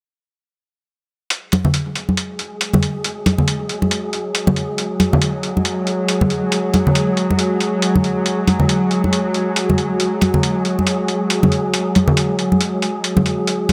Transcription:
1.30 synth drone F#3, synth texture G#3 G#4, closed hi-hat
1.52 closed hi-hat, high conga
1.65 low conga
1.74 closed hi-hat
1.96 closed hi-hat
2.09 high conga
2.17 closed hi-hat
2.39 closed hi-hat
2.61 closed hi-hat
2.73 high conga, low conga
2.83 closed hi-hat
3.04 closed hi-hat
3.26 closed hi-hat, high conga
3.38 low conga
3.48 closed hi-hat
3.69 closed hi-hat
3.82 high conga
3.91 closed hi-hat
4.13 closed hi-hat
4.35 closed hi-hat
4.47 high conga, low conga
4.56 closed hi-hat
4.78 closed hi-hat
5.00 closed hi-hat, high conga
5.13 low conga
5.22 closed hi-hat
5.43 closed hi-hat
5.57 high conga
5.65 closed hi-hat
5.87 closed hi-hat
6.08 closed hi-hat
6.21 high conga, low conga
6.30 closed hi-hat
6.52 closed hi-hat
6.74 closed hi-hat, high conga
6.87 low conga
6.95 closed hi-hat
7.17 closed hi-hat
7.31 high conga
7.39 closed hi-hat
7.61 closed hi-hat
7.82 closed hi-hat
7.96 high conga, low conga
8.04 closed hi-hat
8.26 closed hi-hat
8.47 closed hi-hat, high conga
8.60 low conga
8.69 closed hi-hat
8.91 closed hi-hat
9.04 high conga
9.13 closed hi-hat
9.34 closed hi-hat
9.56 closed hi-hat
9.69 high conga, low conga
9.78 closed hi-hat
10.00 closed hi-hat
10.21 closed hi-hat, high conga
10.34 low conga
10.43 closed hi-hat
10.65 closed hi-hat
10.79 high conga
10.87 closed hi-hat
11.08 closed hi-hat
11.30 closed hi-hat
11.43 high conga, low conga
11.52 closed hi-hat
11.74 closed hi-hat
11.95 closed hi-hat, high conga
12.08 low conga
12.17 closed hi-hat
12.39 closed hi-hat
12.52 high conga
12.61 closed hi-hat
12.82 closed hi-hat
13.04 closed hi-hat
13.17 high conga, low conga
13.26 closed hi-hat
13.47 closed hi-hat
13.69 closed hi-hat, high conga

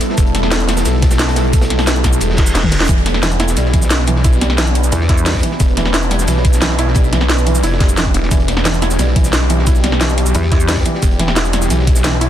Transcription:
Already playing: ambient pad G3 B3 E4 A4
0.01 closed hi-hat, shaker
0.10 snare
0.18 detuned saw bass E1, kick, closed hi-hat, shaker
0.26 closed hi-hat
0.35 snare, closed hi-hat
0.43 snare
0.51 detuned saw bass E1, snare, closed hi-hat, shaker
0.60 closed hi-hat, shaker
0.68 snare, closed hi-hat, shaker
0.77 snare, closed hi-hat, shaker
0.85 detuned saw bass B1, snare, closed hi-hat, shaker
0.94 snare
1.02 kick, snare, closed hi-hat
1.11 snare, closed hi-hat, shaker
1.19 snare, closed hi-hat, shaker
1.28 snare, closed hi-hat
1.36 snare, closed hi-hat, shaker
1.44 closed hi-hat
1.53 kick, closed hi-hat, shaker
1.61 snare, closed hi-hat, shaker
1.70 snare, closed hi-hat
1.79 snare, closed hi-hat
1.87 snare, closed hi-hat, shaker
1.96 snare, shaker
2.04 kick, snare, closed hi-hat, shaker
2.13 shaker
2.21 detuned saw bass E1, closed hi-hat, reverse cymbal, shaker
2.30 snare
2.37 kick, snare, closed hi-hat
2.47 shaker
2.55 wobble bass E1, snare, closed hi-hat, shaker
2.63 kick, snare, high tom
2.71 snare, closed hi-hat, shaker
2.80 snare, closed hi-hat
2.89 detuned saw bass E1, felt piano E3, ambient pad D4 B4, kick, closed hi-hat, shaker
2.98 closed hi-hat
3.06 snare, closed hi-hat
3.14 snare
3.23 detuned saw bass E1, felt piano E3, snare, closed hi-hat, shaker
3.31 closed hi-hat, shaker
3.40 felt piano E4, snare, closed hi-hat, shaker
3.48 snare, shaker
3.57 detuned saw bass B1, felt piano G3, closed hi-hat, shaker
3.65 snare
3.73 felt piano E3, kick, closed hi-hat
3.82 snare, shaker
3.91 snare, closed hi-hat, shaker
3.99 snare
4.07 felt piano E3, closed hi-hat, shaker
4.16 snare
4.24 felt piano E4, kick, closed hi-hat, shaker
4.33 shaker
4.41 felt piano G3, snare, closed hi-hat
4.50 snare
4.58 felt piano E3, snare, closed hi-hat, shaker
4.67 snare, shaker
4.75 closed hi-hat, shaker
4.84 shaker
4.92 wobble bass E2, felt piano E3, closed hi-hat, shaker
5.01 snare
5.09 felt piano E4, kick, snare, closed hi-hat
5.18 shaker
5.26 felt piano G3, snare, closed hi-hat, shaker
5.31 snare, closed hi-hat
5.35 kick, snare, closed hi-hat
5.39 snare, closed hi-hat
5.43 felt piano E3, closed hi-hat, shaker
5.51 snare
5.60 detuned saw bass E1, kick, closed hi-hat, shaker
5.68 closed hi-hat
5.77 felt piano E3, snare, closed hi-hat
5.86 snare
5.93 detuned saw bass E1, felt piano E4, snare, closed hi-hat, shaker
6.02 closed hi-hat, shaker
6.11 felt piano G3, snare, closed hi-hat, shaker
6.19 snare, shaker
6.28 detuned saw bass B1, felt piano E3, closed hi-hat, shaker
6.37 snare
6.45 kick, closed hi-hat
6.53 snare, shaker
6.62 felt piano E3, snare, closed hi-hat, shaker
6.70 snare
6.79 felt piano E4, closed hi-hat, shaker
6.87 snare
6.95 felt piano G3, kick, closed hi-hat, shaker
7.04 shaker
7.12 felt piano E3, snare, closed hi-hat
7.21 snare
7.29 snare, closed hi-hat, shaker
7.38 snare, shaker
7.46 felt piano E3, closed hi-hat, shaker
7.55 shaker
7.63 detuned saw bass F1, felt piano E4, closed hi-hat, shaker
7.72 snare
7.80 felt piano G3, kick, snare, closed hi-hat
7.89 shaker
7.97 felt piano E3, snare, closed hi-hat, shaker
8.05 kick, snare
8.14 wobble bass E1, closed hi-hat, shaker
8.23 snare
8.31 detuned saw bass E1, felt piano E3, ambient pad G4, kick, closed hi-hat, shaker
8.40 closed hi-hat
8.48 snare, closed hi-hat
8.56 snare
8.65 detuned saw bass E1, felt piano E3, snare, closed hi-hat, shaker
8.74 closed hi-hat, shaker
8.82 felt piano E4, snare, closed hi-hat, shaker
8.90 snare, shaker
8.99 detuned saw bass B1, felt piano G3, closed hi-hat, shaker
9.08 snare
9.16 felt piano E3, kick, closed hi-hat
9.24 snare, shaker
9.33 snare, closed hi-hat, shaker
9.42 snare
9.50 felt piano E3, closed hi-hat, shaker
9.59 snare
9.67 felt piano E4, kick, closed hi-hat, shaker
9.75 shaker
9.84 felt piano G3, snare, closed hi-hat
9.92 snare
10.01 felt piano E3, snare, closed hi-hat, shaker
10.09 snare, shaker
10.18 closed hi-hat, shaker
10.26 shaker
10.35 wobble bass E2, felt piano E3, closed hi-hat, shaker
10.42 snare
10.52 felt piano E4, kick, snare, closed hi-hat
10.60 shaker
10.69 felt piano G3, snare, closed hi-hat, shaker
10.72 snare, closed hi-hat
10.76 kick, snare, closed hi-hat
10.81 snare, closed hi-hat
10.85 felt piano E3, closed hi-hat, shaker
10.95 snare
11.03 detuned saw bass E1, kick, closed hi-hat, shaker
11.11 closed hi-hat
11.19 felt piano E3, snare, closed hi-hat
11.28 snare
11.36 detuned saw bass E1, felt piano E4, snare, closed hi-hat, shaker
11.45 closed hi-hat, shaker
11.53 felt piano G3, snare, closed hi-hat, shaker
11.62 snare, shaker
11.70 detuned saw bass B1, felt piano E3, closed hi-hat, shaker
11.79 snare
11.87 kick, closed hi-hat
11.96 snare, shaker
12.04 felt piano E3, snare, closed hi-hat, shaker
12.12 snare
12.21 felt piano E4, closed hi-hat, shaker

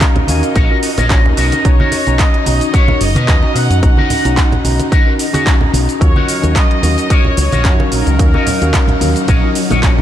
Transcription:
Already playing: tine electric piano C#4 F#4 A#4 F5, string machine D#4, trumpet section A#4
0.01 kick, clap, closed hi-hat, muted conga, shaker
0.15 closed hi-hat, low conga
0.27 fingered electric bass D#2, tine electric piano C#4 F#4 A#4 F5, clean electric guitar G#5, open hi-hat, high conga, shaker
0.43 closed hi-hat, shaker
0.55 fingered electric bass A#1, clean electric guitar F#4 A#4 C#5 D#5 F#5, kick, closed hi-hat, muted conga, shaker
0.71 tine electric piano C#4 F4 F#4 A#4
0.83 open hi-hat, shaker
0.98 fingered electric bass A#1, clean electric guitar F#4 A#4 C#5 D#5, closed hi-hat, muted conga, high conga, shaker
1.10 tine electric piano C#4 F4 F#4 C#5, clean electric guitar D#5, kick, clap, closed hi-hat, shaker
1.25 tine electric piano C#4 D#4 F#4 A#4, low conga
1.37 fingered electric bass B1, clean electric guitar F#4 A#4 B4 D#5, open hi-hat, shaker
1.52 closed hi-hat, muted conga, shaker
1.65 fingered electric bass B1, tine electric piano C#4 D#4 F#4 A#5, trumpet section C#5, kick, closed hi-hat, shaker
1.79 clean electric guitar F#4 A#4 B4 D#5, high conga
1.92 open hi-hat, muted conga, shaker
2.07 fingered electric bass B1, tine electric piano C#4 D#4 F#4 A#5, closed hi-hat, shaker
2.19 trumpet section D#5, kick, clap, closed hi-hat, shaker
2.34 closed hi-hat
2.46 fingered electric bass B1, tine electric piano C#4 D#4 F#4 A#5, open hi-hat, muted conga, high conga, shaker
2.61 closed hi-hat, shaker
2.73 clean electric guitar F#4 A#4 B4 F#5, trumpet section C#5, kick, closed hi-hat, shaker
2.88 tine electric piano C#4 D#4 F#4 A#4, muted conga, low conga
3.01 fingered electric bass F#1, trumpet section D#5, open hi-hat, shaker
3.15 fingered electric bass B2, clean electric guitar F#4 A#4 B4 D#5, closed hi-hat, high conga, shaker
3.28 fingered electric bass D#2, tine electric piano C#4 D#4 F#4 B4, kick, clap, closed hi-hat, shaker
3.43 tine electric piano C#4 D#4 F#4 A#5, muted conga
3.55 fingered electric bass B2, trumpet section F#5, muted clean electric guitar stroke, open hi-hat, shaker
3.70 fingered electric bass F#2, closed hi-hat, shaker
3.82 fingered electric bass B1, tine electric piano C#4 D#4 F#4 A#5, trumpet section F#5, muted clean electric guitar stroke, kick, closed hi-hat, muted conga, shaker
3.97 clean electric guitar F#4 A#4 B4 D#5, high conga
4.10 open hi-hat, low conga, shaker
4.25 fingered electric bass B1, tine electric piano C#4 D#4 F#4 A#5, closed hi-hat, shaker
4.37 kick, clap, closed hi-hat, muted conga, shaker
4.52 closed hi-hat, low conga
4.64 fingered electric bass B1, tine electric piano C#4 D#4 F#4 A#5, open hi-hat, high conga, shaker
4.79 closed hi-hat, muted conga, shaker
4.92 clean electric guitar F#4 A#4 B4 D#5, kick, closed hi-hat, shaker
5.06 tine electric piano C#4 D#4 F#4 A#4
5.19 open hi-hat, shaker
5.33 tine electric piano C#4 D#4 F#4 G#4, clean electric guitar F#4 A#4 B4 D#5, closed hi-hat, muted conga, high conga, shaker
5.45 tine electric piano C#4 D#4 F#4 A#5, kick, clap, closed hi-hat, shaker
5.61 low conga
5.73 fingered electric bass B1, muted clean electric guitar stroke, open hi-hat, muted conga, shaker
5.89 closed hi-hat, shaker
6.00 fingered electric bass D#2, string machine F#3 D#4, tine electric piano C#4 F4 F#4 A#4, trumpet section C#5, muted clean electric guitar stroke, kick, closed hi-hat, shaker
6.16 clean electric guitar F#4 A#4 C#5 F#5, high conga
6.28 open hi-hat, shaker
6.42 fingered electric bass D#2, tine electric piano C#4 F#4 A#4, closed hi-hat, muted conga, shaker
6.56 trumpet section D#5, kick, clap, closed hi-hat, shaker
6.71 closed hi-hat
6.82 fingered electric bass D#2, tine electric piano C#4 F#4 A#4, open hi-hat, muted conga, high conga, shaker
6.98 closed hi-hat, shaker
7.10 clean electric guitar F#4 A#4 C#5 D#5, trumpet section C#5, kick, closed hi-hat, shaker
7.24 tine electric piano C#4 F4 F#4 A#4, low conga
7.37 fingered electric bass C#2, trumpet section C#5, open hi-hat, muted conga, shaker
7.52 fingered electric bass A#1, clean electric guitar F#4 A#4 C#5 D#5, closed hi-hat, high conga, shaker
7.64 fingered electric bass F#2, tine electric piano C#4 F4 F#4 C#5, kick, clap, closed hi-hat, shaker
7.79 tine electric piano C#4 F#4 A#4 F5, muted conga
7.92 fingered electric bass A#1, trumpet section A#4, muted clean electric guitar stroke, open hi-hat, shaker
8.07 fingered electric bass C#2, closed hi-hat, shaker
8.18 fingered electric bass D#2, tine electric piano C#4 F#4 A#4 F5, trumpet section A#4, muted clean electric guitar stroke, kick, closed hi-hat, shaker
8.34 clean electric guitar F#4 A#4 C#5 D#5, muted conga, high conga
8.47 open hi-hat, low conga, shaker
8.61 fingered electric bass D#2, tine electric piano C#4 F#4 A#4 F5, closed hi-hat, shaker
8.73 kick, clap, closed hi-hat, muted conga, shaker
8.88 closed hi-hat, low conga
9.01 fingered electric bass D#2, tine electric piano C#4 F#4 A#4 F5, open hi-hat, high conga, shaker
9.16 closed hi-hat, shaker
9.28 fingered electric bass A#1, clean electric guitar F#4 A#4 C#5 D#5, kick, closed hi-hat, muted conga, shaker
9.43 tine electric piano C#4 F4 F#4 A#4
9.55 open hi-hat, shaker
9.70 fingered electric bass A#1, clean electric guitar F#4 A#4 C#5 D#5, closed hi-hat, muted conga, high conga, shaker
9.83 tine electric piano C#4 F4 F#4 C#5, kick, clap, closed hi-hat, shaker
9.98 tine electric piano C#4 D#4, low conga

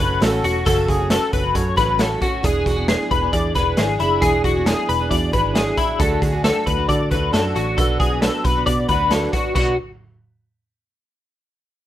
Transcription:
Already playing: reed electric piano C#4 F#4 A4
0.00 picked electric bass F#1, steel-string acoustic guitar F#3 A3 C#4 F#4, clean electric guitar B4, kick
0.20 picked electric bass A1, steel-string acoustic guitar F#3 A3 C#4 F#4, reed electric piano C#4 F#4 A4, clean electric guitar A4, snare, closed hi-hat
0.42 picked electric bass E1, steel-string acoustic guitar F#3 A3 C#4 F#4, clean electric guitar F#4, closed hi-hat
0.65 picked electric bass F#1, steel-string acoustic guitar F#2 C#3 F#3 A3 C#4 F#4, reed electric piano C#4 F#4 A4, clean electric guitar A4, kick, closed hi-hat
0.88 picked electric bass F#1, clean electric guitar G#4, kick, closed hi-hat
0.98 steel-string acoustic guitar F#3 A3 C#4 F#4
1.09 reed electric piano C#4 F#4 A4, clean electric guitar A4, snare, closed hi-hat
1.33 picked electric bass F#1, clean electric guitar B4, kick, closed hi-hat
1.43 steel-string acoustic guitar F#3 A3 C#4 F#4
1.54 picked electric bass F#2, reed electric piano C#4 F#4 A4, clean electric guitar C#5, kick, closed hi-hat
1.76 picked electric bass A1, steel-string acoustic guitar F#3 A3 C#4 F#4, clean electric guitar B4, kick, snare, closed hi-hat
1.98 steel-string acoustic guitar F#3 A3 C#4 F#4, reed electric piano C#4 F#4 A4, clean electric guitar A4, snare, closed hi-hat
2.20 steel-string acoustic guitar F#3 A3 C#4 F#4, clean electric guitar F#4, kick, closed hi-hat
2.42 picked electric bass E1, steel-string acoustic guitar E3 B3 D4 G#4, reed electric piano D4 E4 G#4, clean electric guitar G#4, kick, closed hi-hat
2.66 picked electric bass E1, clean electric guitar F#4, kick, closed hi-hat
2.76 steel-string acoustic guitar B3 D4 G#4
2.88 reed electric piano D4 E4 G#4, clean electric guitar G#4, snare, closed hi-hat
3.11 picked electric bass E1, clean electric guitar B4, kick, closed hi-hat
3.21 steel-string acoustic guitar B3 D4 G#4
3.32 picked electric bass E2, reed electric piano D4 E4 G#4, clean electric guitar D5, kick, closed hi-hat
3.54 picked electric bass E1, steel-string acoustic guitar E3 B3 D4 G#4, clean electric guitar B4, kick, snare, closed hi-hat
3.77 picked electric bass G#1, steel-string acoustic guitar E3 B3 D4 G#4, reed electric piano D4 E4 G#4, clean electric guitar G#4, snare, closed hi-hat
3.99 picked electric bass F#1, steel-string acoustic guitar E3 B3 D4 G#4, clean electric guitar E4, closed hi-hat
4.20 picked electric bass E1, steel-string acoustic guitar E3 B3 D4 G#4, reed electric piano D4 E4 G#4, clean electric guitar G#4, kick, closed hi-hat
4.44 picked electric bass E1, clean electric guitar F#4, kick, closed hi-hat
4.55 steel-string acoustic guitar B3 D4 G#4
4.65 reed electric piano D4 E4 G#4, clean electric guitar G#4, snare, closed hi-hat
4.89 picked electric bass E1, clean electric guitar B4, closed hi-hat
4.99 steel-string acoustic guitar B3 D4 G#4
5.09 picked electric bass E2, reed electric piano D4 E4 F#4, clean electric guitar D5, kick, closed hi-hat
5.33 picked electric bass G#1, steel-string acoustic guitar E3 B3 D4 G#4, clean electric guitar B4, kick, closed hi-hat
5.54 steel-string acoustic guitar E3 B3 D4, reed electric piano D4 E4 G#4, clean electric guitar G#4, snare, closed hi-hat
5.58 steel-string acoustic guitar G#4
5.77 steel-string acoustic guitar E3 B3 D4 G#4, clean electric guitar E4, kick, closed hi-hat
5.99 picked electric bass D2, steel-string acoustic guitar D3 F#3 A3 D4 F#4, reed electric piano D4 F#4 A4, clean electric guitar A4, kick, closed hi-hat
6.22 picked electric bass D2, clean electric guitar G#4, kick, closed hi-hat
6.33 steel-string acoustic guitar A3 D4 F#4
6.43 reed electric piano D4 F#4 A4, clean electric guitar A4, snare, closed hi-hat
6.66 picked electric bass D2, clean electric guitar B4, kick, closed hi-hat
6.77 steel-string acoustic guitar A3 D4 F#4
6.88 picked electric bass D3, reed electric piano D4 F#4 A4, clean electric guitar D5, kick, closed hi-hat
7.11 picked electric bass D2, steel-string acoustic guitar F#3 A3 D4 F#4, clean electric guitar B4, kick, closed hi-hat
7.32 picked electric bass F#2, steel-string acoustic guitar F#3 A3 D4 F#4, reed electric piano D4 F#4 A4, clean electric guitar A4, snare, closed hi-hat
7.55 picked electric bass A1, steel-string acoustic guitar F#3 A3 D4 F#4, clean electric guitar F#4, closed hi-hat
7.76 picked electric bass B1, steel-string acoustic guitar B2 F#3 B3 D4 F#4, reed electric piano D4 F#4 B4, clean electric guitar A4, kick, closed hi-hat
8.00 picked electric bass B1, clean electric guitar G#4, kick, closed hi-hat
8.11 steel-string acoustic guitar B3 D4 F#4
8.21 reed electric piano D4 F#4 B4, clean electric guitar A4, snare, closed hi-hat
8.44 picked electric bass B1, clean electric guitar B4, kick, closed hi-hat
8.55 steel-string acoustic guitar B3 D4 F#4
8.66 picked electric bass B2, reed electric piano D4 F#4 B4, clean electric guitar D5, kick, closed hi-hat
8.88 picked electric bass D2, steel-string acoustic guitar F#3 B3 D4 F#4, clean electric guitar B4, kick, closed hi-hat
9.10 steel-string acoustic guitar F#3 B3 D4 F#4, reed electric piano D4 F#4 B4, clean electric guitar A4, snare, closed hi-hat
9.33 steel-string acoustic guitar F#3 B3 D4 F#4, clean electric guitar F#4, kick, closed hi-hat
9.55 picked electric bass B1, steel-string acoustic guitar B2 F#3 B3 D4 F#4, reed electric piano D4 F#4 B4, clean electric guitar F#4, kick, crash

